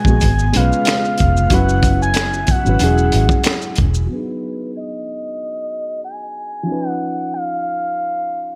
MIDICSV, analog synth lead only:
0, 0, Header, 1, 2, 480
1, 0, Start_track
1, 0, Key_signature, 5, "major"
1, 0, Tempo, 645161
1, 1120, Time_signature, 4, 2, 24, 8
1, 6364, End_track
2, 0, Start_track
2, 0, Title_t, "Analog synth lead"
2, 0, Program_c, 0, 81
2, 0, Note_on_c, 0, 80, 112
2, 419, Note_on_c, 0, 77, 101
2, 430, Note_off_c, 0, 80, 0
2, 1141, Note_on_c, 0, 78, 112
2, 1152, Note_off_c, 0, 77, 0
2, 1501, Note_off_c, 0, 78, 0
2, 1505, Note_on_c, 0, 80, 99
2, 1865, Note_on_c, 0, 78, 99
2, 1877, Note_off_c, 0, 80, 0
2, 2813, Note_off_c, 0, 78, 0
2, 3067, Note_on_c, 0, 71, 76
2, 3504, Note_off_c, 0, 71, 0
2, 3547, Note_on_c, 0, 75, 91
2, 4464, Note_off_c, 0, 75, 0
2, 4497, Note_on_c, 0, 80, 97
2, 5122, Note_off_c, 0, 80, 0
2, 5122, Note_on_c, 0, 78, 97
2, 5460, Note_on_c, 0, 77, 84
2, 5471, Note_off_c, 0, 78, 0
2, 6364, Note_off_c, 0, 77, 0
2, 6364, End_track
0, 0, End_of_file